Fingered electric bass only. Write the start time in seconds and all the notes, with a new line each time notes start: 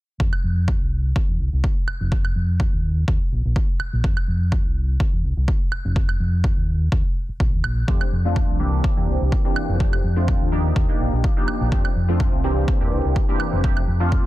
0.20 F2
0.44 F2
0.81 C2
1.29 E2
1.40 C2
1.53 C2
1.88 muted fingered electric bass stroke
2.00 F1
2.36 F2
2.73 D#2
3.08 D#2
3.32 A#1
3.45 A#1
3.80 muted fingered electric bass stroke
3.93 A#1
4.04 F2
4.28 F2
4.65 C2
5.00 muted fingered electric bass stroke
5.13 E2
5.24 C2
5.37 C2
5.72 muted fingered electric bass stroke
5.85 F1
6.20 F2
6.57 D#2
7.29 muted fingered electric bass stroke
7.40 A#1
7.53 D#2
7.64 A#1
7.88 F2
8.12 F2
8.49 C2
8.97 E2
9.08 C2
9.21 C2
9.56 muted fingered electric bass stroke
9.69 F1
10.04 F2
10.41 D#2
11.00 A#1
11.13 A#1
11.48 muted fingered electric bass stroke
11.61 A#1
11.96 F2
12.33 C2
12.81 E2
12.92 C2
13.05 C2
13.40 muted fingered electric bass stroke
13.53 F1
13.88 F2